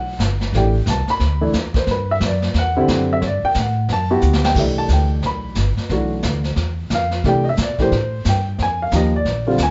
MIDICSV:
0, 0, Header, 1, 5, 480
1, 0, Start_track
1, 0, Key_signature, 1, "major"
1, 0, Tempo, 335570
1, 758, Time_signature, 4, 2, 24, 8
1, 6514, Key_signature, 0, "major"
1, 13882, End_track
2, 0, Start_track
2, 0, Title_t, "Grand piano"
2, 0, Program_c, 0, 0
2, 0, Note_on_c, 0, 78, 89
2, 256, Note_off_c, 0, 78, 0
2, 784, Note_on_c, 0, 52, 61
2, 788, Note_on_c, 0, 62, 53
2, 791, Note_on_c, 0, 57, 56
2, 800, Note_on_c, 0, 67, 65
2, 813, Note_on_c, 0, 79, 80
2, 1044, Note_off_c, 0, 52, 0
2, 1046, Note_off_c, 0, 62, 0
2, 1047, Note_off_c, 0, 57, 0
2, 1051, Note_off_c, 0, 67, 0
2, 1234, Note_off_c, 0, 79, 0
2, 1289, Note_on_c, 0, 81, 84
2, 1558, Note_off_c, 0, 81, 0
2, 1577, Note_on_c, 0, 83, 94
2, 2021, Note_on_c, 0, 52, 70
2, 2021, Note_on_c, 0, 57, 61
2, 2026, Note_on_c, 0, 62, 63
2, 2034, Note_on_c, 0, 64, 73
2, 2171, Note_off_c, 0, 83, 0
2, 2180, Note_off_c, 0, 52, 0
2, 2180, Note_off_c, 0, 57, 0
2, 2183, Note_off_c, 0, 62, 0
2, 2186, Note_off_c, 0, 64, 0
2, 2526, Note_on_c, 0, 72, 76
2, 2685, Note_off_c, 0, 72, 0
2, 2735, Note_on_c, 0, 71, 71
2, 3000, Note_off_c, 0, 71, 0
2, 3023, Note_on_c, 0, 76, 96
2, 3174, Note_off_c, 0, 76, 0
2, 3227, Note_on_c, 0, 74, 70
2, 3640, Note_off_c, 0, 74, 0
2, 3697, Note_on_c, 0, 78, 95
2, 3955, Note_on_c, 0, 50, 73
2, 3956, Note_on_c, 0, 60, 72
2, 3958, Note_on_c, 0, 67, 69
2, 3970, Note_on_c, 0, 64, 82
2, 4115, Note_off_c, 0, 78, 0
2, 4473, Note_on_c, 0, 76, 91
2, 4568, Note_off_c, 0, 50, 0
2, 4568, Note_off_c, 0, 60, 0
2, 4569, Note_off_c, 0, 67, 0
2, 4575, Note_off_c, 0, 64, 0
2, 4600, Note_on_c, 0, 73, 54
2, 4618, Note_off_c, 0, 76, 0
2, 4628, Note_off_c, 0, 73, 0
2, 4672, Note_on_c, 0, 74, 73
2, 4929, Note_off_c, 0, 74, 0
2, 4932, Note_on_c, 0, 79, 104
2, 5087, Note_off_c, 0, 79, 0
2, 5144, Note_on_c, 0, 78, 73
2, 5558, Note_off_c, 0, 78, 0
2, 5617, Note_on_c, 0, 81, 96
2, 5870, Note_on_c, 0, 59, 63
2, 5874, Note_on_c, 0, 66, 75
2, 5878, Note_on_c, 0, 64, 67
2, 5878, Note_on_c, 0, 67, 81
2, 6034, Note_off_c, 0, 81, 0
2, 6366, Note_on_c, 0, 79, 94
2, 6485, Note_off_c, 0, 59, 0
2, 6487, Note_off_c, 0, 66, 0
2, 6489, Note_off_c, 0, 64, 0
2, 6489, Note_off_c, 0, 67, 0
2, 6523, Note_off_c, 0, 79, 0
2, 6525, Note_on_c, 0, 52, 52
2, 6532, Note_on_c, 0, 67, 57
2, 6533, Note_on_c, 0, 57, 50
2, 6536, Note_on_c, 0, 62, 49
2, 6569, Note_on_c, 0, 76, 58
2, 6836, Note_off_c, 0, 76, 0
2, 6841, Note_on_c, 0, 81, 95
2, 7001, Note_off_c, 0, 81, 0
2, 7051, Note_on_c, 0, 79, 68
2, 7471, Note_off_c, 0, 79, 0
2, 7524, Note_on_c, 0, 83, 79
2, 7854, Note_off_c, 0, 52, 0
2, 7857, Note_off_c, 0, 67, 0
2, 7858, Note_off_c, 0, 57, 0
2, 7859, Note_off_c, 0, 62, 0
2, 7948, Note_off_c, 0, 83, 0
2, 8454, Note_on_c, 0, 52, 53
2, 8460, Note_on_c, 0, 62, 52
2, 8461, Note_on_c, 0, 57, 47
2, 8466, Note_on_c, 0, 66, 63
2, 9405, Note_off_c, 0, 52, 0
2, 9408, Note_off_c, 0, 57, 0
2, 9408, Note_off_c, 0, 62, 0
2, 9411, Note_off_c, 0, 66, 0
2, 9934, Note_on_c, 0, 77, 86
2, 10354, Note_off_c, 0, 77, 0
2, 10372, Note_on_c, 0, 52, 60
2, 10379, Note_on_c, 0, 67, 73
2, 10384, Note_on_c, 0, 62, 58
2, 10385, Note_on_c, 0, 57, 59
2, 10415, Note_on_c, 0, 79, 93
2, 10637, Note_off_c, 0, 52, 0
2, 10641, Note_off_c, 0, 67, 0
2, 10643, Note_off_c, 0, 62, 0
2, 10644, Note_off_c, 0, 57, 0
2, 10645, Note_on_c, 0, 75, 62
2, 10665, Note_off_c, 0, 75, 0
2, 10681, Note_off_c, 0, 79, 0
2, 10717, Note_on_c, 0, 76, 84
2, 10861, Note_off_c, 0, 76, 0
2, 10899, Note_on_c, 0, 74, 68
2, 11149, Note_on_c, 0, 57, 55
2, 11153, Note_on_c, 0, 52, 65
2, 11158, Note_on_c, 0, 62, 58
2, 11159, Note_on_c, 0, 67, 74
2, 11163, Note_off_c, 0, 74, 0
2, 11186, Note_on_c, 0, 72, 86
2, 11304, Note_off_c, 0, 57, 0
2, 11306, Note_off_c, 0, 52, 0
2, 11308, Note_off_c, 0, 62, 0
2, 11309, Note_off_c, 0, 67, 0
2, 11776, Note_off_c, 0, 72, 0
2, 11857, Note_on_c, 0, 79, 87
2, 12276, Note_off_c, 0, 79, 0
2, 12337, Note_on_c, 0, 80, 89
2, 12602, Note_off_c, 0, 80, 0
2, 12622, Note_on_c, 0, 77, 80
2, 12773, Note_off_c, 0, 77, 0
2, 12776, Note_on_c, 0, 53, 60
2, 12777, Note_on_c, 0, 58, 53
2, 12782, Note_on_c, 0, 67, 63
2, 12783, Note_on_c, 0, 63, 52
2, 12816, Note_on_c, 0, 75, 66
2, 13039, Note_off_c, 0, 53, 0
2, 13040, Note_off_c, 0, 58, 0
2, 13042, Note_off_c, 0, 67, 0
2, 13043, Note_off_c, 0, 63, 0
2, 13081, Note_off_c, 0, 75, 0
2, 13104, Note_on_c, 0, 74, 83
2, 13541, Note_on_c, 0, 55, 62
2, 13543, Note_on_c, 0, 50, 69
2, 13550, Note_on_c, 0, 60, 61
2, 13553, Note_on_c, 0, 65, 77
2, 13694, Note_off_c, 0, 74, 0
2, 13700, Note_off_c, 0, 50, 0
2, 13700, Note_off_c, 0, 55, 0
2, 13704, Note_off_c, 0, 60, 0
2, 13706, Note_off_c, 0, 65, 0
2, 13771, Note_on_c, 0, 80, 85
2, 13882, Note_off_c, 0, 80, 0
2, 13882, End_track
3, 0, Start_track
3, 0, Title_t, "Upright bass"
3, 0, Program_c, 1, 32
3, 0, Note_on_c, 1, 35, 79
3, 260, Note_off_c, 1, 35, 0
3, 269, Note_on_c, 1, 31, 84
3, 739, Note_off_c, 1, 31, 0
3, 753, Note_on_c, 1, 33, 83
3, 1221, Note_off_c, 1, 33, 0
3, 1230, Note_on_c, 1, 36, 92
3, 1515, Note_off_c, 1, 36, 0
3, 1711, Note_on_c, 1, 38, 78
3, 2180, Note_off_c, 1, 38, 0
3, 2197, Note_on_c, 1, 40, 80
3, 2662, Note_off_c, 1, 40, 0
3, 2674, Note_on_c, 1, 43, 84
3, 3140, Note_off_c, 1, 43, 0
3, 3155, Note_on_c, 1, 42, 94
3, 3621, Note_off_c, 1, 42, 0
3, 3634, Note_on_c, 1, 40, 85
3, 4100, Note_off_c, 1, 40, 0
3, 4121, Note_on_c, 1, 42, 85
3, 4584, Note_off_c, 1, 42, 0
3, 4605, Note_on_c, 1, 43, 88
3, 4882, Note_off_c, 1, 43, 0
3, 5079, Note_on_c, 1, 45, 94
3, 5542, Note_off_c, 1, 45, 0
3, 5564, Note_on_c, 1, 42, 83
3, 6025, Note_off_c, 1, 42, 0
3, 6039, Note_on_c, 1, 38, 90
3, 6502, Note_off_c, 1, 38, 0
3, 6517, Note_on_c, 1, 36, 77
3, 6977, Note_off_c, 1, 36, 0
3, 6986, Note_on_c, 1, 38, 82
3, 7456, Note_off_c, 1, 38, 0
3, 7477, Note_on_c, 1, 35, 74
3, 7941, Note_off_c, 1, 35, 0
3, 7953, Note_on_c, 1, 31, 80
3, 8236, Note_off_c, 1, 31, 0
3, 8432, Note_on_c, 1, 35, 85
3, 8899, Note_off_c, 1, 35, 0
3, 8913, Note_on_c, 1, 38, 91
3, 9380, Note_off_c, 1, 38, 0
3, 9387, Note_on_c, 1, 40, 80
3, 9857, Note_off_c, 1, 40, 0
3, 9873, Note_on_c, 1, 41, 87
3, 10341, Note_off_c, 1, 41, 0
3, 10355, Note_on_c, 1, 48, 83
3, 10821, Note_off_c, 1, 48, 0
3, 10842, Note_on_c, 1, 47, 91
3, 11305, Note_off_c, 1, 47, 0
3, 11324, Note_on_c, 1, 45, 79
3, 11787, Note_off_c, 1, 45, 0
3, 11806, Note_on_c, 1, 43, 79
3, 12267, Note_off_c, 1, 43, 0
3, 12284, Note_on_c, 1, 41, 80
3, 12746, Note_off_c, 1, 41, 0
3, 12760, Note_on_c, 1, 39, 92
3, 13224, Note_off_c, 1, 39, 0
3, 13234, Note_on_c, 1, 34, 74
3, 13701, Note_off_c, 1, 34, 0
3, 13718, Note_on_c, 1, 38, 80
3, 13882, Note_off_c, 1, 38, 0
3, 13882, End_track
4, 0, Start_track
4, 0, Title_t, "Muted upright bass strokes"
4, 1537, Note_on_c, 9, 29, 36
4, 1680, Note_off_c, 9, 29, 0
4, 4908, Note_on_c, 9, 29, 43
4, 5051, Note_off_c, 9, 29, 0
4, 8263, Note_on_c, 9, 29, 34
4, 8406, Note_off_c, 9, 29, 0
4, 13882, End_track
5, 0, Start_track
5, 0, Title_t, "Drums"
5, 277, Note_on_c, 9, 44, 51
5, 284, Note_on_c, 9, 38, 65
5, 420, Note_off_c, 9, 44, 0
5, 427, Note_off_c, 9, 38, 0
5, 586, Note_on_c, 9, 38, 41
5, 729, Note_off_c, 9, 38, 0
5, 764, Note_on_c, 9, 25, 44
5, 764, Note_on_c, 9, 38, 43
5, 907, Note_off_c, 9, 38, 0
5, 1233, Note_on_c, 9, 44, 61
5, 1240, Note_on_c, 9, 38, 60
5, 1376, Note_off_c, 9, 44, 0
5, 1383, Note_off_c, 9, 38, 0
5, 1538, Note_on_c, 9, 38, 42
5, 1681, Note_off_c, 9, 38, 0
5, 1713, Note_off_c, 9, 25, 0
5, 1713, Note_on_c, 9, 25, 52
5, 1713, Note_on_c, 9, 38, 46
5, 1856, Note_off_c, 9, 38, 0
5, 2192, Note_on_c, 9, 44, 61
5, 2199, Note_on_c, 9, 38, 64
5, 2335, Note_off_c, 9, 44, 0
5, 2342, Note_off_c, 9, 38, 0
5, 2494, Note_on_c, 9, 36, 62
5, 2496, Note_on_c, 9, 38, 39
5, 2637, Note_off_c, 9, 36, 0
5, 2639, Note_off_c, 9, 38, 0
5, 2670, Note_off_c, 9, 25, 0
5, 2670, Note_on_c, 9, 25, 46
5, 2670, Note_on_c, 9, 38, 43
5, 2813, Note_off_c, 9, 38, 0
5, 3152, Note_on_c, 9, 44, 51
5, 3159, Note_on_c, 9, 38, 64
5, 3295, Note_off_c, 9, 44, 0
5, 3302, Note_off_c, 9, 38, 0
5, 3464, Note_on_c, 9, 38, 43
5, 3607, Note_off_c, 9, 38, 0
5, 3634, Note_off_c, 9, 25, 0
5, 3634, Note_on_c, 9, 25, 48
5, 3634, Note_on_c, 9, 38, 48
5, 3777, Note_off_c, 9, 38, 0
5, 4117, Note_on_c, 9, 44, 65
5, 4124, Note_on_c, 9, 38, 64
5, 4260, Note_off_c, 9, 44, 0
5, 4267, Note_off_c, 9, 38, 0
5, 4603, Note_off_c, 9, 25, 0
5, 4603, Note_on_c, 9, 25, 42
5, 4603, Note_on_c, 9, 38, 46
5, 4746, Note_off_c, 9, 38, 0
5, 5067, Note_on_c, 9, 44, 59
5, 5074, Note_on_c, 9, 38, 66
5, 5210, Note_off_c, 9, 44, 0
5, 5217, Note_off_c, 9, 38, 0
5, 5557, Note_off_c, 9, 25, 0
5, 5557, Note_on_c, 9, 25, 54
5, 5557, Note_on_c, 9, 38, 47
5, 5700, Note_off_c, 9, 38, 0
5, 6025, Note_on_c, 9, 44, 63
5, 6168, Note_off_c, 9, 44, 0
5, 6195, Note_on_c, 9, 38, 62
5, 6338, Note_off_c, 9, 38, 0
5, 6355, Note_on_c, 9, 38, 86
5, 6498, Note_off_c, 9, 38, 0
5, 6514, Note_on_c, 9, 36, 65
5, 6519, Note_off_c, 9, 25, 0
5, 6519, Note_on_c, 9, 25, 47
5, 6519, Note_on_c, 9, 38, 39
5, 6519, Note_on_c, 9, 49, 68
5, 6657, Note_off_c, 9, 36, 0
5, 6662, Note_off_c, 9, 38, 0
5, 6662, Note_off_c, 9, 49, 0
5, 6988, Note_on_c, 9, 44, 51
5, 6995, Note_on_c, 9, 38, 58
5, 7131, Note_off_c, 9, 44, 0
5, 7138, Note_off_c, 9, 38, 0
5, 7471, Note_off_c, 9, 25, 0
5, 7471, Note_on_c, 9, 25, 39
5, 7471, Note_on_c, 9, 38, 42
5, 7614, Note_off_c, 9, 38, 0
5, 7939, Note_on_c, 9, 44, 51
5, 7946, Note_on_c, 9, 38, 60
5, 8082, Note_off_c, 9, 44, 0
5, 8089, Note_off_c, 9, 38, 0
5, 8254, Note_on_c, 9, 38, 37
5, 8397, Note_off_c, 9, 38, 0
5, 8426, Note_off_c, 9, 25, 0
5, 8426, Note_on_c, 9, 25, 50
5, 8426, Note_on_c, 9, 38, 39
5, 8569, Note_off_c, 9, 38, 0
5, 8902, Note_on_c, 9, 44, 60
5, 8909, Note_on_c, 9, 38, 62
5, 9045, Note_off_c, 9, 44, 0
5, 9052, Note_off_c, 9, 38, 0
5, 9211, Note_on_c, 9, 38, 40
5, 9354, Note_off_c, 9, 38, 0
5, 9382, Note_off_c, 9, 25, 0
5, 9382, Note_on_c, 9, 25, 54
5, 9382, Note_on_c, 9, 38, 43
5, 9525, Note_off_c, 9, 38, 0
5, 9866, Note_on_c, 9, 44, 51
5, 9873, Note_on_c, 9, 38, 66
5, 10009, Note_off_c, 9, 44, 0
5, 10017, Note_off_c, 9, 38, 0
5, 10173, Note_on_c, 9, 38, 41
5, 10316, Note_off_c, 9, 38, 0
5, 10356, Note_off_c, 9, 25, 0
5, 10356, Note_on_c, 9, 25, 41
5, 10356, Note_on_c, 9, 38, 41
5, 10499, Note_off_c, 9, 38, 0
5, 10825, Note_on_c, 9, 44, 56
5, 10832, Note_on_c, 9, 38, 62
5, 10968, Note_off_c, 9, 44, 0
5, 10975, Note_off_c, 9, 38, 0
5, 11139, Note_on_c, 9, 36, 45
5, 11139, Note_on_c, 9, 38, 38
5, 11282, Note_off_c, 9, 36, 0
5, 11282, Note_off_c, 9, 38, 0
5, 11321, Note_off_c, 9, 25, 0
5, 11321, Note_on_c, 9, 25, 44
5, 11321, Note_on_c, 9, 38, 41
5, 11464, Note_off_c, 9, 38, 0
5, 11793, Note_on_c, 9, 44, 60
5, 11800, Note_on_c, 9, 38, 64
5, 11936, Note_off_c, 9, 44, 0
5, 11943, Note_off_c, 9, 38, 0
5, 12281, Note_off_c, 9, 25, 0
5, 12281, Note_on_c, 9, 25, 48
5, 12281, Note_on_c, 9, 38, 45
5, 12424, Note_off_c, 9, 38, 0
5, 12746, Note_on_c, 9, 44, 57
5, 12754, Note_on_c, 9, 38, 66
5, 12889, Note_off_c, 9, 44, 0
5, 12897, Note_off_c, 9, 38, 0
5, 13236, Note_off_c, 9, 25, 0
5, 13236, Note_on_c, 9, 25, 45
5, 13236, Note_on_c, 9, 38, 46
5, 13379, Note_off_c, 9, 38, 0
5, 13698, Note_on_c, 9, 44, 51
5, 13705, Note_on_c, 9, 38, 65
5, 13841, Note_off_c, 9, 44, 0
5, 13848, Note_off_c, 9, 38, 0
5, 13882, Note_off_c, 9, 25, 0
5, 13882, End_track
0, 0, End_of_file